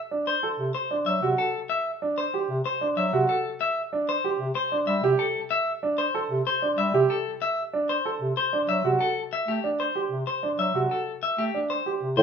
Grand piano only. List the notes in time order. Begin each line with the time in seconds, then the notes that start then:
0.11 D4
0.43 A4
0.91 D4
1.22 F#4
2.02 D4
2.34 G4
2.81 D4
3.13 F#4
3.93 D4
4.24 G4
4.72 D4
5.04 G4
5.83 D4
6.15 A4
6.62 D4
6.94 G4
7.73 D4
8.05 A4
8.53 D4
8.85 F#4
9.64 D4
9.95 G4
10.43 D4
10.75 F#4
11.54 D4
11.86 G4